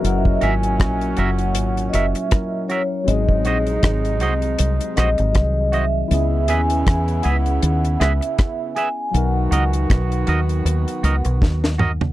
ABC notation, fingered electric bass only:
X:1
M:4/4
L:1/16
Q:"Swing 16ths" 1/4=79
K:F#mix
V:1 name="Fingered electric bass" clef=bass
F,,,2 G,,,2 A,,,2 F,,,2 G,,,2 F,,, z4 z | G,,,2 A,,,2 G,,,2 ^B,,,2 B,,, z A,,, G,,, B,,,4 | C,,2 D,,2 E,,2 C,,2 D,,2 C,, z4 z | B,,,2 C,,2 B,,,2 D,,2 D,, z C,, B,,, D,,4 |]